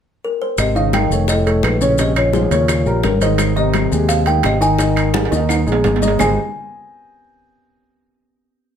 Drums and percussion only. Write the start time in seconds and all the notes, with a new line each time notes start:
0.58 high bongo, high conga, high timbale, claves, maracas
0.76 high conga, maracas
0.93 high bongo, high conga, high timbale, claves, maracas
1.11 high conga, maracas
1.28 high bongo, high conga, high timbale, maracas
1.46 high conga, high timbale, maracas
1.63 high bongo, low bongo, high conga, high timbale, claves, maracas
1.81 maracas
1.98 high bongo, high conga, high timbale, maracas
2.16 high conga, high timbale, claves, maracas
2.33 high bongo, high conga, maracas
2.51 high bongo, high conga, high timbale, maracas
2.68 high bongo, high timbale, claves, maracas
2.85 high bongo, high conga, maracas
3.03 high bongo, low bongo, high conga, high timbale, maracas
3.21 high bongo, high conga, high timbale, maracas
3.38 high bongo, high conga, high timbale, claves, maracas
3.56 high conga, maracas
3.73 high bongo, high conga, high timbale, claves, maracas
3.92 high conga, maracas
4.09 high bongo, high conga, high timbale, maracas
4.26 high conga, high timbale, maracas
4.43 high bongo, low bongo, high conga, high timbale, claves, maracas
4.62 maracas
4.79 high bongo, high conga, high timbale, maracas
4.96 high conga, high timbale, claves, maracas
5.14 high bongo, high conga, high timbale, maracas
5.25 high timbale
5.32 high bongo, high conga, maracas
5.37 high timbale
5.49 low bongo, high conga, high timbale, claves, maracas
5.67 high conga, maracas
5.72 low timbale
5.84 low bongo, high conga, low timbale, maracas
5.96 low timbale
6.02 low bongo, high conga, maracas
6.08 low timbale
6.19 low bongo, low conga, low timbale, claves, maracas